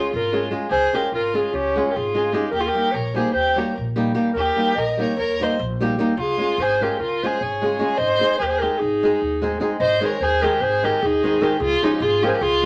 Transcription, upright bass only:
0, 0, Header, 1, 2, 480
1, 0, Start_track
1, 0, Key_signature, -4, "major"
1, 0, Tempo, 403497
1, 828, Time_signature, 9, 3, 24, 8
1, 15054, End_track
2, 0, Start_track
2, 0, Title_t, "Upright bass"
2, 0, Program_c, 0, 32
2, 161, Note_on_c, 0, 32, 91
2, 565, Note_off_c, 0, 32, 0
2, 841, Note_on_c, 0, 37, 90
2, 1002, Note_off_c, 0, 37, 0
2, 1332, Note_on_c, 0, 32, 77
2, 1628, Note_off_c, 0, 32, 0
2, 1826, Note_on_c, 0, 37, 84
2, 2122, Note_off_c, 0, 37, 0
2, 2336, Note_on_c, 0, 32, 97
2, 2737, Note_off_c, 0, 32, 0
2, 3003, Note_on_c, 0, 39, 100
2, 3165, Note_off_c, 0, 39, 0
2, 3499, Note_on_c, 0, 34, 86
2, 3794, Note_off_c, 0, 34, 0
2, 3977, Note_on_c, 0, 39, 76
2, 4277, Note_off_c, 0, 39, 0
2, 4491, Note_on_c, 0, 34, 87
2, 4895, Note_off_c, 0, 34, 0
2, 5171, Note_on_c, 0, 39, 82
2, 5332, Note_off_c, 0, 39, 0
2, 5663, Note_on_c, 0, 34, 83
2, 5958, Note_off_c, 0, 34, 0
2, 6150, Note_on_c, 0, 39, 98
2, 6447, Note_off_c, 0, 39, 0
2, 6653, Note_on_c, 0, 34, 106
2, 7058, Note_off_c, 0, 34, 0
2, 7345, Note_on_c, 0, 37, 104
2, 7503, Note_off_c, 0, 37, 0
2, 7827, Note_on_c, 0, 32, 94
2, 8122, Note_off_c, 0, 32, 0
2, 8313, Note_on_c, 0, 37, 68
2, 8611, Note_off_c, 0, 37, 0
2, 8813, Note_on_c, 0, 32, 81
2, 9218, Note_off_c, 0, 32, 0
2, 9497, Note_on_c, 0, 32, 90
2, 9658, Note_off_c, 0, 32, 0
2, 9991, Note_on_c, 0, 39, 83
2, 10285, Note_off_c, 0, 39, 0
2, 10489, Note_on_c, 0, 32, 79
2, 10782, Note_off_c, 0, 32, 0
2, 10962, Note_on_c, 0, 39, 83
2, 11369, Note_off_c, 0, 39, 0
2, 11657, Note_on_c, 0, 32, 107
2, 11817, Note_off_c, 0, 32, 0
2, 12142, Note_on_c, 0, 39, 89
2, 12435, Note_off_c, 0, 39, 0
2, 12611, Note_on_c, 0, 32, 94
2, 12911, Note_off_c, 0, 32, 0
2, 13115, Note_on_c, 0, 39, 104
2, 13519, Note_off_c, 0, 39, 0
2, 13797, Note_on_c, 0, 37, 102
2, 13958, Note_off_c, 0, 37, 0
2, 14277, Note_on_c, 0, 32, 103
2, 14573, Note_off_c, 0, 32, 0
2, 14763, Note_on_c, 0, 37, 98
2, 15054, Note_off_c, 0, 37, 0
2, 15054, End_track
0, 0, End_of_file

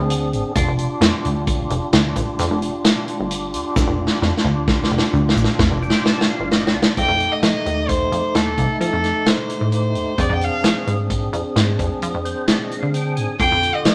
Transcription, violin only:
0, 0, Header, 1, 2, 480
1, 0, Start_track
1, 0, Tempo, 458716
1, 585, Time_signature, 7, 2, 24, 8
1, 14595, End_track
2, 0, Start_track
2, 0, Title_t, "Violin"
2, 0, Program_c, 0, 40
2, 7304, Note_on_c, 0, 79, 93
2, 7659, Note_on_c, 0, 75, 74
2, 7675, Note_off_c, 0, 79, 0
2, 7764, Note_off_c, 0, 75, 0
2, 7771, Note_on_c, 0, 75, 89
2, 8248, Note_on_c, 0, 72, 75
2, 8264, Note_off_c, 0, 75, 0
2, 8733, Note_on_c, 0, 69, 75
2, 8749, Note_off_c, 0, 72, 0
2, 9214, Note_off_c, 0, 69, 0
2, 9226, Note_on_c, 0, 69, 74
2, 9704, Note_on_c, 0, 72, 76
2, 9720, Note_off_c, 0, 69, 0
2, 10180, Note_off_c, 0, 72, 0
2, 10187, Note_on_c, 0, 72, 79
2, 10676, Note_on_c, 0, 74, 76
2, 10692, Note_off_c, 0, 72, 0
2, 10821, Note_off_c, 0, 74, 0
2, 10827, Note_on_c, 0, 79, 50
2, 10923, Note_on_c, 0, 77, 78
2, 10939, Note_off_c, 0, 79, 0
2, 11391, Note_off_c, 0, 77, 0
2, 14020, Note_on_c, 0, 79, 91
2, 14383, Note_on_c, 0, 75, 69
2, 14399, Note_off_c, 0, 79, 0
2, 14490, Note_off_c, 0, 75, 0
2, 14496, Note_on_c, 0, 75, 83
2, 14595, Note_off_c, 0, 75, 0
2, 14595, End_track
0, 0, End_of_file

